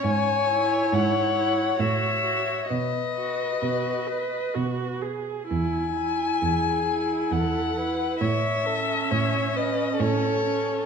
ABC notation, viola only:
X:1
M:3/4
L:1/8
Q:1/4=66
K:E
V:1 name="Viola"
z E2 E F F | z F F B F G | E E2 E2 E | z C2 C2 C |]